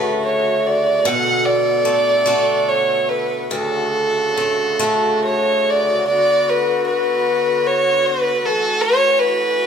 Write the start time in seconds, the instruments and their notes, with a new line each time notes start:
Already playing: steel-string acoustic guitar D2 A3 F#4, accordion C#3 D3 F#4, fiddle B4
0.25 fiddle C#5
0.67 fiddle D5
1.04 steel-string acoustic guitar B2, accordion B3 A4, fiddle F#5
1.46 fiddle D5
1.85 steel-string acoustic guitar A3
2.26 steel-string acoustic guitar A3 D4 F#4
2.69 fiddle C#5
3.09 fiddle B4
3.42 fiddle B4
3.51 steel-string acoustic guitar D2, accordion C#3 D3 F#4, fiddle A4
4.38 steel-string acoustic guitar A3
4.79 steel-string acoustic guitar A3 F#4
5.24 fiddle C#5
5.70 fiddle D5
6.08 accordion D3 B3 F#4, fiddle D5
6.49 fiddle B4
6.87 fiddle B4
7.67 fiddle C#5
8.07 fiddle B4
8.42 accordion E3 A3, fiddle A4
8.81 fiddle C#5
9.19 fiddle B4